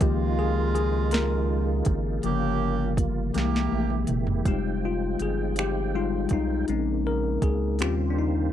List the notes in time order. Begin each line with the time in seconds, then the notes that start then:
Already playing: D#4
0.00 C#2 C#3 D#3 F3 G#3 A#3 F4 G4, kick, closed hi-hat
0.39 G#4
0.75 G#4, closed hi-hat
1.11 A#4, snare, closed hi-hat
1.85 G#1, kick, closed hi-hat
2.23 G1 C#3 F3 G3 A#3 C#4 G4, closed hi-hat
2.97 kick, closed hi-hat
3.34 C2 C3 E3 G#3 A#3 E4 G4, snare, closed hi-hat
3.56 snare
3.72 A#1, high tom
3.90 mid tom
4.07 F#1, closed hi-hat, mid tom
4.27 floor tom
4.45 F1 F3 G3 G#3 C4 D#4 F4 G4 G5, kick, closed hi-hat
4.85 F4
5.20 G1 G#4, closed hi-hat
5.56 G4, finger snap, closed hi-hat
5.95 G3 G#3 D#4 F4
6.29 B1 D#4, kick, closed hi-hat
6.68 A#1 C#3 G#3 A#3 C4 C#4 D#4, closed hi-hat
7.07 A#4
7.42 C#2 G#4, kick, closed hi-hat
7.79 D#2 D#3 G3 C4 C#4 F4 G4 C5, finger snap, closed hi-hat
8.10 D4
8.19 D#4